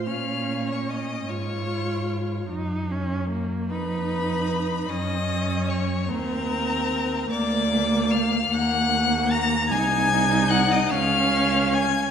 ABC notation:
X:1
M:6/8
L:1/16
Q:3/8=50
K:Bbm
V:1 name="Violin"
f'3 d' e'2 d'6 | z6 =b6 | e'4 d'2 b6 | =d'4 f'2 g'4 b'2 |
a'4 g' e' f'4 a'2 |]
V:2 name="Violin"
f3 d e2 d6 | z6 =B6 | e4 d2 B6 | =d4 f2 g4 b2 |
a4 g e f4 a2 |]
V:3 name="Viola"
D6 F6 | E2 D2 B,2 ^D6 | D6 C6 | B,6 B,6 |
E6 D6 |]
V:4 name="Cello" clef=bass
B,,6 A,,6 | G,,6 F,,6 | G,,6 E,,6 | =D,,6 E,,6 |
C,,6 D,,6 |]